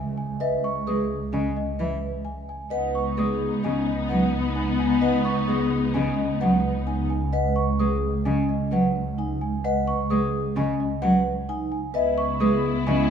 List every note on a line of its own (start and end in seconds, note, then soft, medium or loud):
0.00 2.58 C#2 medium
0.00 0.25 G#5 medium
0.18 0.48 G#5 medium
0.40 0.71 B4 medium
0.40 0.71 D#5 medium
0.40 0.71 E5 medium
0.64 0.94 C#6 medium
0.87 1.05 G#3 soft
0.87 1.17 G#4 medium
0.87 1.17 B4 medium
0.87 1.17 D#6 medium
1.33 1.50 C#3 medium
1.33 1.63 C#4 medium
1.33 1.63 D#5 medium
1.33 1.63 G#5 medium
1.57 1.86 D#5 medium
1.79 1.97 E3 medium
1.79 2.09 B4 medium
1.79 2.10 E5 medium
2.25 2.55 G#5 medium
2.49 2.79 G#5 medium
2.70 11.81 C#2 medium
2.70 7.06 B3 medium
2.70 7.06 D#4 medium
2.70 3.02 B4 medium
2.70 3.01 D#5 medium
2.70 3.02 F#5 medium
2.95 3.25 C#6 medium
3.17 3.35 G#3 medium
3.17 3.48 G#4 medium
3.17 3.48 B4 medium
3.17 3.48 D#6 medium
3.63 3.81 C#3 medium
3.63 3.94 C#4 medium
3.63 3.94 D#5 medium
3.63 3.94 G#5 medium
3.87 4.17 D#5 medium
4.09 4.28 F#3 medium
4.09 4.40 B4 medium
4.09 4.40 F#5 medium
4.55 4.86 D#4 medium
4.55 4.86 G#5 medium
4.79 5.09 G#5 medium
5.01 5.32 B4 medium
5.01 5.32 D#5 medium
5.01 5.32 F#5 medium
5.25 5.55 C#6 medium
5.48 5.66 G#3 medium
5.48 5.78 G#4 medium
5.48 5.79 B4 medium
5.48 5.79 D#6 medium
5.94 6.12 C#3 medium
5.94 6.25 C#4 medium
5.94 6.25 D#5 medium
5.94 6.25 G#5 medium
6.17 6.47 D#5 medium
6.40 6.58 F#3 medium
6.40 6.71 B4 medium
6.40 6.71 F#5 medium
6.87 7.17 D#4 medium
6.87 7.17 G#5 medium
7.10 7.40 G#5 medium
7.33 7.63 B4 medium
7.33 7.63 D#5 medium
7.33 7.63 F#5 medium
7.56 7.86 C#6 medium
7.79 7.97 G#3 medium
7.79 8.10 G#4 medium
7.79 8.09 B4 medium
7.79 8.09 D#6 medium
8.25 8.43 C#3 medium
8.25 8.56 C#4 medium
8.25 8.56 D#5 medium
8.25 8.56 G#5 medium
8.49 8.79 D#5 medium
8.72 8.89 F#3 medium
8.72 9.02 B4 medium
8.72 9.02 F#5 medium
9.18 9.48 D#4 medium
9.18 9.48 G#5 medium
9.41 9.71 G#5 medium
9.64 9.94 B4 medium
9.64 9.94 D#5 medium
9.64 9.94 F#5 medium
9.88 10.17 C#6 medium
10.10 10.28 G#3 medium
10.10 10.40 G#4 medium
10.10 10.40 B4 medium
10.10 10.40 D#6 medium
10.56 10.74 C#3 medium
10.56 10.86 C#4 medium
10.56 10.87 D#5 medium
10.56 10.87 G#5 medium
10.80 11.10 D#5 medium
11.02 11.20 F#3 medium
11.02 11.32 B4 medium
11.02 11.32 F#5 medium
11.49 11.79 D#4 medium
11.49 11.79 G#5 medium
11.72 12.02 G#5 medium
11.94 13.10 C#2 medium
11.94 13.10 B3 medium
11.94 13.10 E4 medium
11.94 12.25 B4 medium
11.94 12.25 D#5 medium
11.94 12.25 E5 medium
12.18 12.48 C#6 medium
12.40 12.58 G#3 medium
12.40 12.71 G#4 medium
12.40 12.71 B4 medium
12.40 12.71 D#6 medium
12.87 13.04 C#3 medium
12.87 13.10 C#4 medium
12.87 13.10 D#5 medium
12.87 13.10 G#5 medium